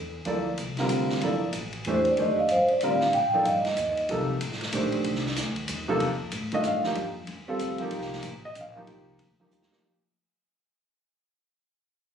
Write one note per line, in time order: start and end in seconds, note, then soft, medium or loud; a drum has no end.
0.00 0.26 E2 medium
0.25 0.57 D2 medium
0.25 0.44 F3 medium
0.25 0.44 A#3 medium
0.25 0.45 E4 soft
0.25 0.44 A4 medium
0.25 0.45 D5 medium
0.25 ride medium
0.58 0.89 C2 medium
0.58 hi-hat pedal medium
0.58 ride medium
0.77 1.20 D3 medium
0.77 1.20 G3 medium
0.77 1.20 C4 medium
0.77 1.20 F4 medium
0.77 1.21 A#4 medium
0.77 snare soft
0.77 ride soft
0.89 1.21 F1 medium
0.89 hi-hat pedal medium
0.89 ride medium
1.10 snare soft
1.21 1.53 G1 medium
1.21 1.40 F3 medium
1.21 1.40 A#3 soft
1.21 1.41 E4 soft
1.21 1.41 A4 soft
1.21 1.41 D5 medium
1.21 ride medium
1.53 1.85 A1 medium
1.53 hi-hat pedal medium
1.53 ride medium
1.73 ride soft
1.85 2.17 E2 medium
1.85 2.04 E3 medium
1.85 2.05 A3 medium
1.85 2.05 D4 medium
1.85 2.05 G4 medium
1.85 2.05 C5 medium
1.85 ride medium
1.92 2.09 C5 medium
2.05 ride soft
2.11 2.20 D5 medium
2.17 2.49 F2 medium
2.17 2.36 D#3 medium
2.17 2.36 A3 soft
2.17 2.36 D4 soft
2.17 2.36 G4 soft
2.17 2.37 C5 medium
2.17 ride medium
2.21 2.40 D#5 medium
2.39 2.50 F5 medium
2.49 2.68 G2 medium
2.49 2.71 C5 medium
2.49 hi-hat pedal soft
2.49 ride medium
2.68 2.82 D5 medium
2.68 muted upright bass stroke soft
2.68 ride soft
2.81 3.13 A2 medium
2.81 3.00 D3 medium
2.81 3.00 G3 medium
2.81 3.00 C4 medium
2.81 3.01 F4 medium
2.81 3.01 A#4 medium
2.81 3.12 F5 medium
2.81 hi-hat pedal soft
2.81 ride medium
3.00 snare medium
3.13 3.45 A#2 medium
3.13 3.32 G5 loud
3.13 ride medium
3.33 3.44 F3 medium
3.33 3.45 A#3 medium
3.33 3.45 D#4 medium
3.33 3.45 A4 medium
3.33 3.45 D5 medium
3.33 3.46 F5 medium
3.45 3.77 G2 medium
3.45 3.95 D#5 medium
3.45 hi-hat pedal soft
3.45 ride medium
3.65 snare soft
3.65 ride soft
3.77 4.08 D#2 medium
3.77 hi-hat pedal medium
3.77 ride medium
3.97 ride soft
4.09 4.40 C2 medium
4.09 4.27 C3 medium
4.09 4.28 F3 soft
4.09 4.28 A#3 soft
4.09 4.28 D#4 soft
4.09 4.28 A4 medium
4.09 ride medium
4.41 4.72 A1 medium
4.41 hi-hat pedal soft
4.41 ride medium
4.52 snare soft
4.61 snare soft
4.61 ride soft
4.72 5.04 A#1 medium
4.72 5.21 D#3 medium
4.72 5.21 A3 soft
4.72 5.21 D4 medium
4.72 5.21 G4 soft
4.72 5.22 C5 medium
4.72 hi-hat pedal medium
4.72 ride medium
4.92 ride soft
5.04 5.36 C2 medium
5.04 ride medium
5.15 snare soft
5.26 snare soft
5.36 5.68 D2 medium
5.36 snare soft
5.36 hi-hat pedal medium
5.36 ride medium
5.56 kick soft
5.56 ride soft
5.68 6.00 D#2 medium
5.68 hi-hat pedal medium
5.68 ride medium
5.88 6.01 C3 medium
5.88 6.01 F3 medium
5.88 6.01 A#3 medium
5.88 6.01 D#4 medium
5.88 6.01 A4 medium
6.00 6.32 F2 medium
6.00 ride medium
6.20 kick soft
6.32 6.64 A2 medium
6.32 hi-hat pedal medium
6.32 ride medium
6.52 6.83 D#3 medium
6.52 6.83 A3 medium
6.52 6.83 D4 medium
6.52 6.84 F4 medium
6.52 6.65 D#5 medium
6.52 ride soft
6.64 6.96 G2 medium
6.64 6.85 F5 medium
6.64 hi-hat pedal medium
6.64 ride medium
6.84 6.95 F3 medium
6.84 6.95 A#3 medium
6.84 6.96 D#4 medium
6.84 6.96 G4 medium
6.84 snare medium
6.95 7.28 F2 medium
6.95 ride medium
7.27 7.59 D#2 medium
7.27 ride medium
7.48 7.78 G3 medium
7.48 7.78 C4 medium
7.48 7.79 F4 medium
7.48 7.79 A4 medium
7.59 7.79 D2 medium
7.59 hi-hat pedal medium
7.59 ride medium
7.78 8.22 F3 medium
7.78 8.22 A#3 medium
7.78 8.22 D#4 medium
7.78 8.23 G4 medium
7.78 muted upright bass stroke soft
7.78 ride soft
7.91 8.23 C2 medium
7.91 ride medium
8.01 snare soft
8.13 snare soft
8.23 8.55 A1 medium
8.23 hi-hat pedal medium
8.23 ride medium
8.45 8.57 D#5 medium
8.55 8.87 A#1 medium
8.55 hi-hat pedal medium
8.55 ride medium
8.61 8.71 F5 medium
8.75 9.18 F3 medium
8.75 9.18 A#3 medium
8.75 9.19 D#4 medium
8.75 9.19 G4 medium
8.75 kick soft
8.87 9.19 C2 medium
8.87 ride medium
9.19 9.51 D2 medium
9.19 ride medium
9.40 9.70 F3 medium
9.40 9.70 A#3 medium
9.40 9.71 D#4 medium
9.40 9.71 G4 medium
9.51 9.71 D#2 medium
9.51 hi-hat pedal medium
9.62 snare medium
9.71 9.84 F3 medium
9.71 9.84 A#3 medium
9.71 9.84 D#4 medium
9.71 9.85 G4 medium
9.71 snare medium